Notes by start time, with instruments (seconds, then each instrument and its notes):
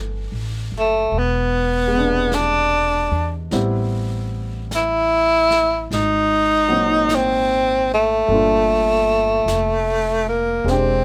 Already playing: upright bass G1, grand piano E3 A3 B3 D4
0.32 upright bass A1
0.72 upright bass F#1
0.79 tenor saxophone A3
1.12 upright bass E1, brush sweep
1.18 tenor saxophone B3
1.88 grand piano G#3 B3
1.95 grand piano C3 D4
2.32 tenor saxophone D4, brush sweep, snare, hi-hat pedal
3.11 upright bass E2
3.51 upright bass A1, grand piano G3 B3 C4 E4, brush sweep, snare
4.71 brush sweep, snare, hi-hat pedal
4.75 tenor saxophone E4
5.51 snare
5.91 upright bass G#1, tenor saxophone D#4, brush sweep, snare
6.68 grand piano A#2 F#3 C4
6.73 grand piano D#4
7.09 brush sweep, snare, hi-hat pedal
7.15 tenor saxophone C4
7.94 tenor saxophone A3
8.28 upright bass G1, grand piano A#2 D4 A4, brush sweep
8.34 grand piano F4
9.46 upright bass F1, brush sweep, snare, hi-hat pedal
10.28 tenor saxophone A#3
10.64 upright bass E1, grand piano G#3 C4, brush sweep, snare
10.69 tenor saxophone C4, grand piano D4 G4